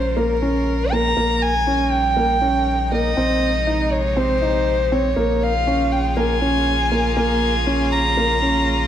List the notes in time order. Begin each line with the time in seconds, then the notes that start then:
Already playing: A#1 C#3 G#3 F4 A#4 C5
0.17 A#3 A#4
0.42 C#4
0.92 A#3 A#5
1.16 A#1 A#3
1.42 G#5
1.49 G3
1.67 C#4 D#4
1.92 G5
2.17 A#3
2.41 C#4
2.92 A#3 D#5
3.16 A#1 C3 C4
3.28 G#3
3.67 D#4
3.92 C#5
4.06 G4
4.17 C4 C5
4.42 D#4
4.92 C4 C#5
5.16 A#1 C#3 A#3
5.43 A#3 F4 F5
5.67 C#4
5.93 G5
5.99 G#4
6.17 A#3 G#5
6.41 C#4
6.92 A#3
7.16 A#3 G#5
7.67 C#4
7.92 A#5
8.17 A#3
8.42 C#4